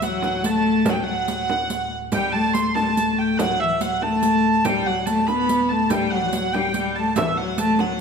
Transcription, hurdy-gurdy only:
0.03 0.46 F#5 medium
0.46 0.89 A5 loud
0.89 0.94 F#5 medium
0.89 1.03 G5 medium
1.03 1.94 F#5 loud
2.13 2.32 G5 loud
2.32 2.54 A5 loud
2.54 2.76 C6 loud
2.75 3.18 A5 loud
3.18 3.38 G5 medium
3.38 3.60 F#5 loud
3.60 3.81 E5 loud
3.81 4.02 F#5 loud
4.02 4.65 A5 loud
4.65 4.86 G5 loud
4.86 5.07 F#5 loud
5.06 5.27 A5 loud
5.27 5.69 B5 loud
5.69 5.90 A5 medium
5.90 6.10 G5 loud
6.10 6.53 F#5 loud
6.53 6.96 G5 loud
6.96 7.17 A5 medium
7.17 7.37 E5 loud
7.37 7.58 F#5 loud
7.58 7.80 A5 loud
7.80 8.00 F#5 loud

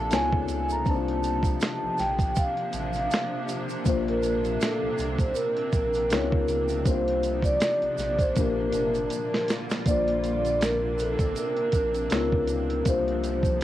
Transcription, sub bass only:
0.00 0.13 A#1 loud
0.12 0.46 C#2 loud
0.49 0.83 C#2 medium
0.86 1.57 C2 loud
1.83 1.89 A#1 soft
1.99 2.34 A#1 medium
2.73 3.08 A1 medium
3.86 4.57 A#1 loud
4.82 4.89 C2 soft
4.99 5.33 C2 medium
5.73 6.12 A#1 medium
6.11 6.46 C#2 loud
6.48 6.83 C#2 medium
6.86 7.57 C2 loud
7.82 7.89 A#1 soft
7.98 8.33 A#1 medium
8.37 8.71 A#1 loud
8.73 9.08 G1 medium
9.86 11.16 A#1 loud
11.19 11.34 A1 loud
11.73 12.08 A#1 loud
12.12 12.82 C#2 loud
12.86 13.64 C2 loud

